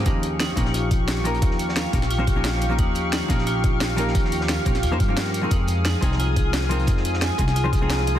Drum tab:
HH |x-x-x-x-x-x-x-xx|x-x-x-x-x-x-x-x-|x-x-x-x-x-x-x-x-|x-x-x-x-x-x-x-x-|
SD |----o-oo----oo--|-o-oo--o----oo--|----o-oo----o--o|-o-oo--o----oo--|
BD |o-----o---o-----|o-----o---o-----|o-----o---o-----|o-----o---o-----|

HH |x-x-x-x-x-x-x-xx|x-x-x-x-x-x-x-x-|
SD |----o-oo----oo--|-o-oo--o----oo--|
BD |o-----o---o-----|o-----o---o-----|